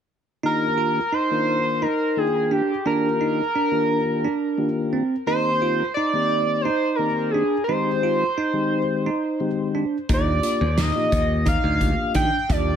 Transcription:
0.43 1.00 D#3 medium
0.43 1.00 A#3 medium
0.43 1.00 D4 medium
0.43 0.66 D#4 medium
0.43 1.00 F4 medium
0.43 1.01 G4 medium
0.43 1.15 A#4 loud
0.78 1.00 F4 medium
1.13 1.57 D#4 medium
1.13 1.84 C5 loud
1.31 1.87 D#3 medium
1.31 1.87 A#3 medium
1.31 1.87 D4 medium
1.31 1.87 F4 medium
1.31 1.87 A#4 medium
1.82 2.26 D#4 medium
1.82 2.19 A#4 medium
2.16 2.62 D#3 medium
2.16 2.62 A#3 medium
2.16 2.62 D4 medium
2.16 2.62 F4 medium
2.16 2.53 G#4 medium
2.16 2.62 G5 medium
2.51 2.73 D4 medium
2.51 2.86 G4 medium
2.85 3.42 D#3 medium
2.85 3.42 A#3 medium
2.85 3.08 D4 medium
2.85 3.42 D4 medium
2.85 3.42 F4 medium
2.85 3.42 G4 medium
2.85 4.89 A#4 medium
3.21 3.43 D#4 medium
3.55 3.99 D4 medium
3.71 4.28 D#3 medium
3.71 4.28 A#3 medium
3.71 4.28 D4 medium
3.71 4.28 F4 medium
3.71 4.28 G4 medium
4.24 4.68 D4 medium
4.58 5.03 D#3 medium
4.58 5.03 A#3 medium
4.58 5.03 D4 medium
4.58 5.03 F4 medium
4.58 5.03 G4 medium
4.93 5.15 C4 medium
5.26 5.83 D#3 medium
5.26 5.83 A#3 medium
5.26 5.83 C4 medium
5.26 5.83 D#4 medium
5.26 5.49 D#4 medium
5.26 5.83 G4 medium
5.26 5.92 C5 loud
5.62 5.84 F4 medium
5.94 6.40 D#4 medium
5.94 6.63 D5 loud
6.13 6.69 D#3 medium
6.13 6.69 A#3 medium
6.13 6.70 C4 medium
6.13 6.70 D#4 medium
6.13 6.70 G4 medium
6.61 6.97 C5 medium
6.65 7.09 D#4 medium
6.95 7.44 D#3 medium
6.95 7.44 A#3 medium
6.95 7.44 C4 medium
6.95 7.32 A#4 medium
6.99 7.44 D#4 medium
6.99 7.44 G4 medium
7.30 7.56 D4 medium
7.30 7.64 G#4 medium
7.64 8.24 D#3 medium
7.64 8.24 G#3 medium
7.64 8.24 C4 medium
7.64 9.69 C5 medium
7.69 8.24 D#4 medium
7.69 7.91 D#4 medium
7.69 8.25 G4 medium
8.03 8.25 F4 medium
8.38 8.81 D#4 medium
8.53 9.10 D#3 medium
8.53 9.10 G#3 medium
8.53 9.10 C4 medium
8.53 9.10 D#4 medium
8.53 9.10 G4 medium
9.06 9.50 D#4 medium
9.40 9.85 D#3 medium
9.40 9.85 G#3 medium
9.40 9.85 C4 medium
9.40 9.85 D#4 medium
9.40 9.85 G4 medium
9.75 9.97 D4 medium
10.09 10.39 D#2 medium
10.09 10.65 A#3 medium
10.09 10.65 D4 medium
10.09 10.31 D#4 medium
10.09 10.66 F4 medium
10.09 10.66 G4 medium
10.09 kick medium
10.09 closed hi-hat medium
10.13 10.82 D5 medium
10.43 10.65 F4 medium
10.43 closed hi-hat soft
10.61 10.90 D#2 medium
10.77 11.21 D#4 medium
10.77 11.48 D#5 medium
10.77 snare medium
10.77 closed hi-hat medium
10.95 11.51 A#3 medium
10.95 11.51 D#4 medium
10.95 11.51 F4 medium
10.95 11.51 G4 medium
11.12 11.56 D#2 medium
11.12 kick medium
11.12 closed hi-hat soft
11.46 11.90 D#4 medium
11.46 12.12 F5 medium
11.46 kick medium
11.46 closed hi-hat medium
11.64 11.93 D2 medium
11.81 12.26 A#3 medium
11.81 12.26 D4 medium
11.81 12.26 F4 medium
11.81 12.26 G4 medium
11.81 kick medium
11.81 closed hi-hat soft
12.15 12.30 D#3 medium
12.15 12.37 D4 medium
12.15 12.52 G5 loud
12.15 kick medium
12.15 closed hi-hat soft
12.49 12.76 D#2 medium
12.49 12.76 A#3 medium
12.49 12.76 D4 medium
12.49 12.71 D4 medium
12.49 12.76 F4 medium
12.49 12.76 G4 medium
12.49 12.76 D5 medium
12.49 kick medium
12.49 closed hi-hat medium

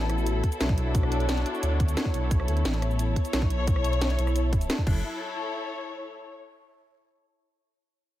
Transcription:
0.00 0.42 A1 medium
0.00 4.83 B3 medium
0.00 4.85 E4 medium
0.00 2.28 F#4 medium
0.00 4.87 A4 medium
0.00 0.34 B4 medium
0.00 4.83 C#5 medium
0.00 closed hi-hat soft
0.10 cross-stick soft
0.10 closed hi-hat medium
0.18 shaker soft
0.27 closed hi-hat medium
0.27 shaker medium
0.44 kick medium
0.44 closed hi-hat medium
0.52 closed hi-hat soft
0.52 shaker medium
0.60 1.44 B1 loud
0.60 2.87 D4 medium
0.60 snare loud
0.60 closed hi-hat medium
0.60 shaker medium
0.69 kick loud
0.78 closed hi-hat medium
0.95 kick loud
0.95 closed hi-hat medium
0.95 shaker medium
1.03 cross-stick soft
1.12 closed hi-hat medium
1.20 closed hi-hat soft
1.29 snare loud
1.29 closed hi-hat medium
1.29 shaker medium
1.37 closed hi-hat soft
1.46 closed hi-hat medium
1.54 shaker soft
1.63 1.96 D2 medium
1.63 closed hi-hat loud
1.63 shaker medium
1.80 kick loud
1.80 closed hi-hat medium
1.88 closed hi-hat soft
1.88 shaker medium
1.97 snare loud
1.97 closed hi-hat medium
1.97 shaker medium
2.05 kick medium
2.14 2.30 B1 medium
2.14 closed hi-hat medium
2.31 2.47 B1 loud
2.31 4.84 E4 medium
2.31 kick loud
2.31 closed hi-hat medium
2.31 shaker medium
2.40 cross-stick soft
2.48 2.64 D2 loud
2.48 closed hi-hat medium
2.57 closed hi-hat soft
2.65 3.15 A1 medium
2.65 snare loud
2.65 closed hi-hat medium
2.65 shaker medium
2.74 4.87 C#5 medium
2.74 closed hi-hat soft
2.82 cross-stick soft
2.82 closed hi-hat medium
2.91 shaker soft
2.99 closed hi-hat loud
2.99 shaker medium
3.16 kick medium
3.16 closed hi-hat medium
3.25 closed hi-hat soft
3.25 shaker medium
3.33 4.17 B1 loud
3.33 snare loud
3.33 closed hi-hat medium
3.33 shaker medium
3.42 kick loud
3.50 closed hi-hat medium
3.67 kick loud
3.67 closed hi-hat loud
3.67 shaker medium
3.76 cross-stick soft
3.84 closed hi-hat medium
3.84 shaker soft
3.93 closed hi-hat soft
4.01 snare loud
4.01 closed hi-hat loud
4.01 shaker medium
4.10 closed hi-hat soft
4.19 4.68 B1 loud
4.19 closed hi-hat medium
4.27 cross-stick soft
4.27 shaker soft
4.36 closed hi-hat loud
4.36 shaker medium
4.53 kick loud
4.53 closed hi-hat medium
4.53 shaker soft
4.61 closed hi-hat soft
4.61 shaker medium
4.70 snare loud
4.70 closed hi-hat loud
4.70 shaker medium
4.78 kick medium
4.86 5.03 F#1 loud
4.86 6.19 E4 medium
4.86 kick loud
4.86 crash medium
4.92 6.19 A4 medium
5.14 6.36 C#5 medium

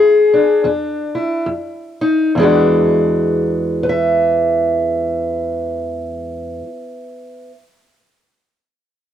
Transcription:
0.00 0.58 E2 medium
0.00 0.65 G#4 medium
0.33 0.63 D4 soft
0.64 1.41 E2 medium
0.64 1.44 D4 medium
1.15 1.47 E4 soft
1.46 2.28 F2 medium
2.01 2.32 D#4 medium
2.35 6.61 E2 medium
2.35 6.63 E3 medium
2.39 6.65 G#3 medium
2.39 3.83 D4 medium
2.39 3.89 F#4 medium
3.83 7.51 B4 medium
3.89 7.54 E5 medium

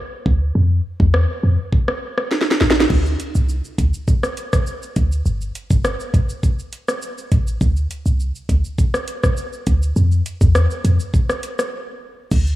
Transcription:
0.26 0.52 D2 medium
0.26 kick loud
0.55 0.81 F2 loud
1.00 1.26 E2 medium
1.00 kick medium
1.14 cross-stick loud
1.43 1.57 F2 medium
1.73 kick medium
1.88 cross-stick medium
2.18 cross-stick medium
2.31 snare medium
2.41 snare medium
2.51 snare medium
2.61 2.87 A1 medium
2.61 snare medium
2.70 snare loud
2.80 snare medium
2.90 3.16 D2 loud
2.90 kick loud
2.90 crash medium
3.06 shaker soft
3.20 closed hi-hat medium
3.20 shaker medium
3.35 3.61 C2 loud
3.35 shaker medium
3.49 shaker medium
3.65 shaker soft
3.78 3.92 D2 medium
3.78 kick medium
3.78 closed hi-hat medium
3.78 shaker soft
3.94 shaker medium
4.08 kick medium
4.08 shaker medium
4.23 cross-stick medium
4.23 shaker medium
4.37 closed hi-hat medium
4.37 shaker medium
4.53 kick medium
4.53 cross-stick medium
4.53 shaker medium
4.67 shaker medium
4.82 shaker medium
4.96 5.22 D2 medium
4.96 kick medium
4.96 closed hi-hat medium
4.96 shaker soft
5.12 shaker medium
5.26 5.51 G1 loud
5.26 shaker medium
5.41 shaker medium
5.55 closed hi-hat medium
5.55 shaker medium
5.70 5.96 G1 loud
5.70 kick medium
5.70 shaker medium
5.85 cross-stick loud
5.85 shaker medium
6.00 shaker soft
6.14 6.28 A1 medium
6.14 kick medium
6.14 closed hi-hat medium
6.14 shaker soft
6.29 shaker medium
6.43 kick medium
6.43 shaker medium
6.59 shaker medium
6.73 closed hi-hat medium
6.73 shaker medium
6.88 cross-stick medium
6.88 shaker medium
7.02 shaker medium
7.18 shaker medium
7.32 7.57 A1 medium
7.32 kick loud
7.32 closed hi-hat medium
7.32 shaker medium
7.47 shaker medium
7.61 7.87 D2 loud
7.61 kick loud
7.61 shaker medium
7.77 shaker medium
7.91 closed hi-hat medium
7.91 shaker medium
8.06 8.32 C2 loud
8.06 shaker medium
8.20 shaker medium
8.35 shaker soft
8.49 8.63 D2 medium
8.49 kick medium
8.49 closed hi-hat medium
8.49 shaker medium
8.64 shaker medium
8.78 kick medium
8.78 shaker medium
8.94 cross-stick medium
8.94 shaker medium
9.08 closed hi-hat medium
9.08 shaker medium
9.23 kick medium
9.23 cross-stick medium
9.23 shaker medium
9.37 shaker medium
9.53 shaker medium
9.67 9.93 D2 medium
9.67 kick medium
9.67 closed hi-hat medium
9.67 shaker medium
9.82 shaker medium
9.96 10.22 F2 loud
9.96 shaker medium
10.12 shaker medium
10.26 closed hi-hat medium
10.26 shaker medium
10.41 10.67 E2 loud
10.41 kick medium
10.41 shaker medium
10.55 cross-stick loud
10.55 shaker medium
10.71 shaker soft
10.85 10.98 F2 medium
10.85 closed hi-hat medium
10.85 shaker soft
11.00 shaker medium
11.14 kick medium
11.14 shaker medium
11.30 cross-stick medium
11.30 shaker medium
11.43 closed hi-hat medium
11.43 shaker medium
11.59 cross-stick medium
11.59 shaker medium
12.31 12.56 D2 loud
12.31 kick loud
12.31 crash loud
12.31 shaker medium
12.47 shaker medium

